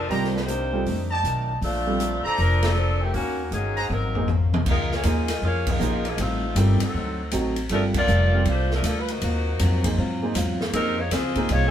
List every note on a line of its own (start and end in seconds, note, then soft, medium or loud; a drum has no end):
0.09 0.83 C2 medium
0.09 0.37 C3 soft
0.09 0.37 D#3 soft
0.09 0.32 G3 medium
0.09 0.32 A#3 medium
0.09 0.37 A#3 medium
0.09 0.33 C4 medium
0.09 0.33 D#4 medium
0.09 0.33 F4 soft
0.09 0.33 G4 medium
0.09 0.33 A#4 medium
0.09 0.33 C5 medium
0.09 0.27 C5 medium
0.09 0.27 D5 medium
0.09 0.27 D#5 medium
0.09 0.27 A#5 medium
0.09 open hi-hat soft
0.13 0.38 D4 soft
0.24 snare soft
0.34 0.82 A#3 medium
0.34 1.14 D#4 medium
0.34 1.14 G4 medium
0.34 1.14 C5 medium
0.34 snare soft
0.48 0.74 C3 medium
0.48 0.75 D#3 medium
0.48 0.75 A#3 medium
0.48 0.75 D4 medium
0.48 closed hi-hat medium
0.73 0.85 G3 medium
0.73 0.85 C4 medium
0.73 0.85 F4 medium
0.73 0.85 A4 medium
0.86 1.21 F2 medium
0.86 1.12 F2 medium
0.86 1.13 D#3 medium
0.86 1.13 A3 medium
0.86 1.13 D4 medium
0.86 open hi-hat soft
1.11 1.59 D5 medium
1.11 1.59 D#5 medium
1.11 1.59 G5 medium
1.11 1.59 A5 medium
1.23 1.59 B1 medium
1.23 1.51 F2 medium
1.23 1.51 D#3 medium
1.23 1.51 A3 medium
1.23 1.51 D4 medium
1.23 closed hi-hat soft
1.61 2.21 A#1 medium
1.61 2.22 A3 medium
1.61 1.88 A#3 soft
1.61 2.21 C4 medium
1.61 1.89 D4 soft
1.61 2.22 D4 medium
1.61 2.21 F4 loud
1.61 1.89 A4 medium
1.61 1.90 C5 soft
1.61 open hi-hat soft
1.87 1.99 G3 medium
1.87 1.99 C4 medium
1.87 1.99 F4 medium
1.87 1.99 A4 medium
1.99 2.26 A#3 medium
1.99 2.26 D4 medium
1.99 2.27 A4 medium
1.99 2.27 C5 medium
1.99 closed hi-hat medium
2.24 2.38 F3 medium
2.24 2.38 C4 medium
2.24 2.38 D4 medium
2.24 2.38 A4 medium
2.24 2.73 C5 medium
2.24 2.73 D5 medium
2.24 2.73 A5 medium
2.24 2.73 A#5 loud
2.24 muted upright bass stroke soft
2.38 3.10 F1 medium
2.38 2.62 F3 medium
2.38 2.64 A#3 soft
2.38 2.62 C4 medium
2.38 2.65 D4 medium
2.38 2.62 D4 medium
2.38 2.65 A4 medium
2.38 2.63 A#4 loud
2.38 2.66 C5 medium
2.38 open hi-hat soft
2.63 3.01 F3 loud
2.63 3.00 C4 medium
2.63 3.01 D4 medium
2.63 3.01 A4 loud
2.63 snare medium
2.63 ride medium
2.76 3.02 A#3 soft
2.76 3.02 D4 medium
2.76 3.03 A4 medium
2.76 3.03 C5 medium
3.01 3.12 D#3 medium
3.01 3.15 A3 medium
3.01 3.14 C4 medium
3.01 3.15 G4 medium
3.13 3.49 D#2 medium
3.13 3.49 D#3 medium
3.13 3.40 D#3 soft
3.13 3.49 A#3 medium
3.13 3.41 A#3 soft
3.13 3.50 C#4 medium
3.13 3.41 C#4 soft
3.13 3.49 F#4 loud
3.13 3.42 F#4 soft
3.13 open hi-hat soft
3.51 3.87 G1 medium
3.51 3.79 D#3 medium
3.51 3.91 F#3 medium
3.51 3.79 A#3 medium
3.51 3.90 C#4 medium
3.51 3.79 C#4 medium
3.51 3.90 D#4 medium
3.51 3.80 F#4 medium
3.51 3.90 G#4 medium
3.51 closed hi-hat medium
3.77 3.86 C5 medium
3.77 3.86 F#5 medium
3.77 3.86 G#5 medium
3.77 3.86 A#5 medium
3.77 open hi-hat soft
3.90 4.49 G#1 medium
3.90 4.16 G#2 soft
3.90 4.17 F#3 soft
3.90 4.29 F#3 medium
3.90 4.17 A#3 medium
3.90 4.29 C4 medium
3.90 4.18 C4 medium
3.90 4.29 D#4 medium
3.90 4.29 A#4 medium
3.90 high tom soft
4.15 4.27 A#3 medium
4.15 4.27 D#4 medium
4.15 4.28 G#4 medium
4.15 4.28 C5 medium
4.15 floor tom medium
4.27 4.54 G#2 medium
4.27 4.54 F#3 soft
4.27 4.55 A#3 medium
4.27 4.55 C4 medium
4.27 high tom medium
4.53 4.65 C2 medium
4.53 high tom medium
4.65 5.03 C#2 medium
4.65 4.92 C#3 soft
4.65 4.92 F3 soft
4.65 4.93 A#3 soft
4.65 4.93 D#4 medium
4.65 kick medium
4.65 crash medium
4.69 4.91 G#3 medium
4.69 4.91 D#4 medium
4.69 4.91 F4 medium
4.69 4.91 A#4 medium
4.91 5.05 A#3 medium
4.91 5.06 F4 medium
4.91 5.05 G#4 medium
4.91 5.06 C#5 loud
4.91 snare soft
5.03 5.41 D#2 medium
5.03 5.31 C#3 medium
5.03 5.31 F3 medium
5.03 5.26 A#3 medium
5.03 5.31 A#3 medium
5.03 5.43 A#3 medium
5.03 5.26 D#4 medium
5.03 5.31 D#4 medium
5.03 5.44 F4 medium
5.03 5.27 G#4 medium
5.03 5.43 G#4 medium
5.03 5.27 C5 medium
5.03 5.43 D#5 loud
5.03 hi-hat pedal medium
5.03 ride medium
5.28 snare soft
5.28 ride medium
5.42 5.79 F2 medium
5.42 5.68 C#3 soft
5.42 5.69 F3 medium
5.42 5.69 A#3 medium
5.42 5.67 A#3 medium
5.42 5.70 D#4 medium
5.42 5.67 F4 medium
5.42 5.67 G#4 medium
5.42 5.67 C#5 loud
5.67 6.06 G#3 medium
5.67 6.06 D#4 medium
5.67 6.06 F4 medium
5.67 6.06 A#4 loud
5.67 kick medium
5.67 crash medium
5.79 6.16 A#1 medium
5.79 6.05 C#3 medium
5.79 6.06 F3 medium
5.79 6.02 A#3 medium
5.79 6.06 A#3 medium
5.79 6.03 D#4 medium
5.79 6.06 D#4 medium
5.79 6.03 G#4 medium
5.79 6.03 C5 medium
5.79 hi-hat pedal medium
6.05 6.19 F3 medium
6.05 6.19 A#3 medium
6.05 6.19 D#4 medium
6.05 6.19 G#4 medium
6.05 ride soft
6.17 6.54 A1 medium
6.17 6.44 A2 soft
6.17 6.44 G3 soft
6.17 6.57 A3 medium
6.17 6.45 C4 soft
6.17 6.57 C4 medium
6.17 6.45 D#4 medium
6.17 6.57 D#4 medium
6.17 6.57 F4 loud
6.17 ride medium
6.56 6.79 G1 medium
6.56 6.82 A2 medium
6.56 6.82 D#3 medium
6.56 6.82 G3 medium
6.56 6.78 G3 medium
6.56 6.82 A3 medium
6.56 6.83 C4 medium
6.56 6.79 C4 medium
6.56 6.82 C4 medium
6.56 6.83 D#4 medium
6.56 6.79 F4 medium
6.56 6.81 G4 medium
6.56 6.79 A4 medium
6.56 hi-hat pedal medium
6.56 ride medium
6.80 7.33 F#3 medium
6.80 7.33 C4 medium
6.80 7.33 D#4 medium
6.80 7.33 A4 medium
6.80 muted upright bass stroke soft
6.80 ride medium
6.94 7.31 D2 medium
6.94 7.20 D3 soft
6.94 7.20 F#3 medium
6.94 7.21 C4 medium
6.94 7.21 D#4 medium
7.31 7.69 A1 medium
7.31 7.58 D3 medium
7.31 7.58 F#3 medium
7.31 7.54 A3 medium
7.31 7.54 C4 soft
7.31 7.58 C4 medium
7.31 7.54 D#4 soft
7.31 7.59 D#4 medium
7.31 7.55 F#4 medium
7.31 hi-hat pedal medium
7.31 ride medium
7.56 ride medium
7.69 8.07 G1 medium
7.69 7.83 F3 medium
7.69 7.96 G3 soft
7.69 7.92 G3 medium
7.69 7.83 A3 medium
7.69 7.96 A#3 soft
7.69 7.93 C4 soft
7.69 7.83 D4 medium
7.69 7.96 F4 soft
7.69 7.93 F4 medium
7.69 7.93 A4 medium
7.69 7.97 A4 medium
7.69 7.83 A#4 medium
7.69 ride medium
7.94 8.43 A#3 medium
7.94 8.43 F4 medium
7.94 8.43 A4 medium
7.94 8.43 D5 loud
7.94 kick medium
7.94 crash medium
8.07 8.44 F1 medium
8.07 8.33 G3 medium
8.07 8.34 A#3 medium
8.07 8.34 F4 medium
8.07 8.34 A4 medium
8.07 hi-hat pedal medium
8.33 8.44 G3 medium
8.33 8.45 C4 medium
8.33 8.45 F4 medium
8.33 8.45 C5 medium
8.45 8.82 C2 medium
8.45 8.71 G3 soft
8.45 8.72 A3 medium
8.45 8.72 A#3 medium
8.45 8.72 D4 medium
8.45 8.72 F4 medium
8.45 8.73 A4 medium
8.45 8.72 C5 loud
8.45 ride medium
8.70 8.84 F3 medium
8.70 8.84 D4 medium
8.70 8.84 A#4 medium
8.70 snare soft
8.75 8.85 A3 medium
8.82 9.20 D2 loud
8.82 9.10 G3 medium
8.82 9.10 A#3 medium
8.82 9.10 F4 medium
8.82 9.11 A4 medium
8.82 hi-hat pedal medium
8.82 ride medium
8.87 9.01 F3 medium
8.87 9.01 A#3 medium
8.87 9.01 D4 medium
8.87 9.01 A4 medium
9.00 9.09 B4 medium
9.08 9.85 A#3 medium
9.08 9.85 D#4 medium
9.08 9.85 F#4 medium
9.08 9.85 C5 medium
9.08 ride medium
9.21 9.58 D#2 medium
9.21 9.47 G#2 soft
9.21 9.48 F#3 soft
9.21 9.48 C4 soft
9.21 9.49 F4 soft
9.21 ride medium
9.59 9.96 F2 medium
9.59 9.85 G#2 medium
9.59 9.86 F#3 medium
9.59 9.86 C4 medium
9.59 9.86 F4 medium
9.59 hi-hat pedal medium
9.59 ride medium
9.84 9.96 A#3 medium
9.84 9.96 D#4 medium
9.84 9.96 G#4 medium
9.84 9.96 C5 medium
9.84 kick medium
9.84 ride medium
9.97 10.23 G#2 medium
9.97 10.34 G#2 medium
9.97 10.24 F#3 medium
9.97 10.24 C4 medium
9.97 10.24 F4 medium
10.22 10.34 A#3 medium
10.22 10.34 D#4 medium
10.22 10.34 G#4 medium
10.22 10.35 C5 medium
10.34 10.72 E2 medium
10.34 10.61 G#2 medium
10.34 10.61 F#3 medium
10.34 10.61 C4 medium
10.34 10.62 F4 medium
10.34 hi-hat pedal medium
10.34 ride medium
10.60 snare medium
10.73 11.10 F2 medium
10.73 10.99 C#3 soft
10.73 11.00 F3 soft
10.73 10.96 G3 medium
10.73 10.95 A#3 medium
10.73 10.97 C4 medium
10.73 11.00 C4 soft
10.73 10.95 D#4 medium
10.73 10.97 D#4 medium
10.73 11.00 D#4 soft
10.73 10.96 G#4 medium
10.73 10.96 A#4 loud
10.73 10.96 C5 medium
10.73 ride medium
10.99 11.11 G#3 medium
10.99 11.11 D#4 medium
10.99 11.10 F4 medium
10.99 11.11 C#5 medium
11.11 11.48 C#2 medium
11.11 11.37 C#3 medium
11.11 11.37 F3 medium
11.11 11.49 C4 medium
11.11 11.38 C4 medium
11.11 11.38 D#4 medium
11.11 11.49 F4 medium
11.11 11.49 G#4 medium
11.11 11.49 D#5 medium
11.11 snare soft
11.11 hi-hat pedal medium
11.11 ride medium
11.35 11.71 A#3 medium
11.35 11.71 D#4 soft
11.35 11.71 G#4 medium
11.35 11.71 C5 medium
11.35 kick medium
11.35 ride soft
11.49 11.71 C2 medium
11.49 11.71 C#3 soft
11.49 11.71 F3 medium
11.49 11.65 G#3 medium
11.49 11.71 C4 medium
11.49 11.65 D#4 medium
11.49 11.71 D#4 medium
11.49 11.65 F4 medium
11.49 11.65 C#5 loud
11.49 ride medium
11.67 11.71 G#4 medium